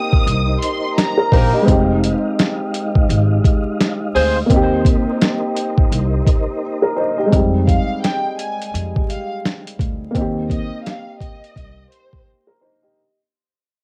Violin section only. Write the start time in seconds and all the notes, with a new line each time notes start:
Already playing: D#6
0.62 C6
0.98 A#5
7.67 F5
8.02 G5
8.39 G#5
9.10 F5
10.50 D#5
10.85 F5
11.21 D#5
11.91 C5